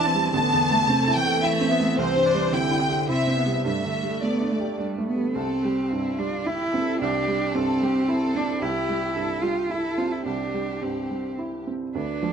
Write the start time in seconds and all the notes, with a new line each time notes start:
Already playing: E2 B2 E3 G3 D4 E4 G4 A5
0.06 C4
0.15 G3
0.33 A1 D3 B3 A5
0.53 E2
0.71 A3
0.88 C3 A3 C4
1.08 E4
1.16 E3 G5
1.26 A4
1.43 A3 E4 E5
1.61 C4
1.71 B3
1.80 A3
1.98 C2 E3 C4 C5
2.16 G2
2.26 D4
2.34 G3
2.52 D3 C4 E4 G5
2.71 E4
2.80 C4
2.90 G4
3.08 C3 C4 E4 E5
3.27 C4
3.37 B3
3.46 G3
3.65 G2 G3 A3 E5
3.84 D3
4.03 G3
4.22 A3 B3 D5
4.41 D4
4.52 A3
4.60 G4
4.78 G3 D4
4.98 A3
5.08 B3
5.16 G3
5.35 C2 C4 A4
5.64 G3 G4
5.91 G2 E4
6.18 G3 D4 F4
6.46 E4 G4
6.73 C4 A4
7.00 C2 D4 G4
7.28 G3
7.54 G2 C4 A4
7.82 G3 G4
8.08 E4 A4
8.35 C4 D4
8.61 C2 E4 G4
8.89 G3
9.15 G2 A4
9.42 G3 F4 G4
9.70 E4 A4
9.98 C4 F4
10.12 E4
10.26 C2 D4 G4
10.54 G3
10.82 G2 C4
11.10 G3
11.38 E4
11.67 C4
11.95 D2 D4 B4
12.23 F3 A4